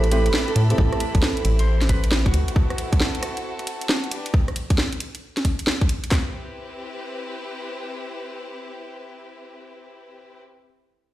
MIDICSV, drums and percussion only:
0, 0, Header, 1, 2, 480
1, 0, Start_track
1, 0, Tempo, 444444
1, 843, Time_signature, 4, 2, 24, 8
1, 12029, End_track
2, 0, Start_track
2, 0, Title_t, "Drums"
2, 39, Note_on_c, 9, 37, 29
2, 39, Note_on_c, 9, 42, 50
2, 124, Note_on_c, 9, 46, 108
2, 147, Note_off_c, 9, 37, 0
2, 147, Note_off_c, 9, 42, 0
2, 232, Note_off_c, 9, 46, 0
2, 279, Note_on_c, 9, 42, 64
2, 364, Note_on_c, 9, 38, 118
2, 387, Note_off_c, 9, 42, 0
2, 472, Note_off_c, 9, 38, 0
2, 519, Note_on_c, 9, 42, 35
2, 602, Note_on_c, 9, 46, 108
2, 627, Note_off_c, 9, 42, 0
2, 710, Note_off_c, 9, 46, 0
2, 758, Note_on_c, 9, 42, 60
2, 844, Note_on_c, 9, 36, 119
2, 866, Note_off_c, 9, 42, 0
2, 952, Note_off_c, 9, 36, 0
2, 999, Note_on_c, 9, 37, 66
2, 999, Note_on_c, 9, 42, 32
2, 1084, Note_on_c, 9, 46, 102
2, 1107, Note_off_c, 9, 37, 0
2, 1107, Note_off_c, 9, 42, 0
2, 1192, Note_off_c, 9, 46, 0
2, 1239, Note_on_c, 9, 42, 58
2, 1240, Note_on_c, 9, 36, 104
2, 1324, Note_on_c, 9, 38, 116
2, 1347, Note_off_c, 9, 42, 0
2, 1348, Note_off_c, 9, 36, 0
2, 1432, Note_off_c, 9, 38, 0
2, 1479, Note_on_c, 9, 42, 50
2, 1564, Note_on_c, 9, 46, 102
2, 1587, Note_off_c, 9, 42, 0
2, 1672, Note_off_c, 9, 46, 0
2, 1719, Note_on_c, 9, 42, 59
2, 1827, Note_off_c, 9, 42, 0
2, 1960, Note_on_c, 9, 37, 30
2, 1960, Note_on_c, 9, 38, 59
2, 1960, Note_on_c, 9, 42, 47
2, 2044, Note_on_c, 9, 36, 61
2, 2044, Note_on_c, 9, 46, 104
2, 2068, Note_off_c, 9, 37, 0
2, 2068, Note_off_c, 9, 38, 0
2, 2068, Note_off_c, 9, 42, 0
2, 2152, Note_off_c, 9, 36, 0
2, 2152, Note_off_c, 9, 46, 0
2, 2200, Note_on_c, 9, 42, 59
2, 2285, Note_on_c, 9, 38, 119
2, 2308, Note_off_c, 9, 42, 0
2, 2393, Note_off_c, 9, 38, 0
2, 2439, Note_on_c, 9, 36, 103
2, 2441, Note_on_c, 9, 42, 34
2, 2525, Note_on_c, 9, 46, 97
2, 2547, Note_off_c, 9, 36, 0
2, 2549, Note_off_c, 9, 42, 0
2, 2633, Note_off_c, 9, 46, 0
2, 2680, Note_on_c, 9, 42, 61
2, 2764, Note_on_c, 9, 36, 118
2, 2788, Note_off_c, 9, 42, 0
2, 2872, Note_off_c, 9, 36, 0
2, 2920, Note_on_c, 9, 37, 62
2, 2920, Note_on_c, 9, 42, 32
2, 3005, Note_on_c, 9, 46, 97
2, 3028, Note_off_c, 9, 37, 0
2, 3028, Note_off_c, 9, 42, 0
2, 3113, Note_off_c, 9, 46, 0
2, 3160, Note_on_c, 9, 36, 99
2, 3160, Note_on_c, 9, 42, 57
2, 3245, Note_on_c, 9, 38, 110
2, 3268, Note_off_c, 9, 36, 0
2, 3268, Note_off_c, 9, 42, 0
2, 3353, Note_off_c, 9, 38, 0
2, 3400, Note_on_c, 9, 42, 50
2, 3484, Note_on_c, 9, 37, 64
2, 3484, Note_on_c, 9, 46, 100
2, 3508, Note_off_c, 9, 42, 0
2, 3592, Note_off_c, 9, 37, 0
2, 3592, Note_off_c, 9, 46, 0
2, 3640, Note_on_c, 9, 42, 56
2, 3748, Note_off_c, 9, 42, 0
2, 3880, Note_on_c, 9, 37, 29
2, 3880, Note_on_c, 9, 42, 44
2, 3964, Note_on_c, 9, 46, 97
2, 3988, Note_off_c, 9, 37, 0
2, 3988, Note_off_c, 9, 42, 0
2, 4072, Note_off_c, 9, 46, 0
2, 4120, Note_on_c, 9, 42, 60
2, 4204, Note_on_c, 9, 38, 118
2, 4228, Note_off_c, 9, 42, 0
2, 4312, Note_off_c, 9, 38, 0
2, 4360, Note_on_c, 9, 42, 32
2, 4444, Note_on_c, 9, 46, 100
2, 4468, Note_off_c, 9, 42, 0
2, 4552, Note_off_c, 9, 46, 0
2, 4600, Note_on_c, 9, 42, 58
2, 4685, Note_on_c, 9, 36, 118
2, 4708, Note_off_c, 9, 42, 0
2, 4793, Note_off_c, 9, 36, 0
2, 4840, Note_on_c, 9, 37, 58
2, 4840, Note_on_c, 9, 42, 32
2, 4924, Note_on_c, 9, 46, 95
2, 4948, Note_off_c, 9, 37, 0
2, 4948, Note_off_c, 9, 42, 0
2, 5032, Note_off_c, 9, 46, 0
2, 5079, Note_on_c, 9, 42, 60
2, 5080, Note_on_c, 9, 36, 97
2, 5164, Note_on_c, 9, 38, 106
2, 5187, Note_off_c, 9, 42, 0
2, 5188, Note_off_c, 9, 36, 0
2, 5272, Note_off_c, 9, 38, 0
2, 5319, Note_on_c, 9, 42, 50
2, 5404, Note_on_c, 9, 46, 95
2, 5427, Note_off_c, 9, 42, 0
2, 5512, Note_off_c, 9, 46, 0
2, 5559, Note_on_c, 9, 42, 54
2, 5667, Note_off_c, 9, 42, 0
2, 5799, Note_on_c, 9, 37, 27
2, 5799, Note_on_c, 9, 38, 55
2, 5799, Note_on_c, 9, 42, 46
2, 5884, Note_on_c, 9, 36, 56
2, 5884, Note_on_c, 9, 46, 96
2, 5907, Note_off_c, 9, 37, 0
2, 5907, Note_off_c, 9, 38, 0
2, 5907, Note_off_c, 9, 42, 0
2, 5992, Note_off_c, 9, 36, 0
2, 5992, Note_off_c, 9, 46, 0
2, 6039, Note_on_c, 9, 42, 61
2, 6123, Note_on_c, 9, 38, 114
2, 6147, Note_off_c, 9, 42, 0
2, 6231, Note_off_c, 9, 38, 0
2, 6279, Note_on_c, 9, 36, 97
2, 6279, Note_on_c, 9, 42, 33
2, 6364, Note_on_c, 9, 46, 94
2, 6387, Note_off_c, 9, 36, 0
2, 6387, Note_off_c, 9, 42, 0
2, 6472, Note_off_c, 9, 46, 0
2, 6519, Note_on_c, 9, 42, 57
2, 6604, Note_on_c, 9, 36, 97
2, 6604, Note_on_c, 9, 38, 95
2, 6604, Note_on_c, 9, 39, 81
2, 6627, Note_off_c, 9, 42, 0
2, 6712, Note_off_c, 9, 36, 0
2, 6712, Note_off_c, 9, 38, 0
2, 6712, Note_off_c, 9, 39, 0
2, 12029, End_track
0, 0, End_of_file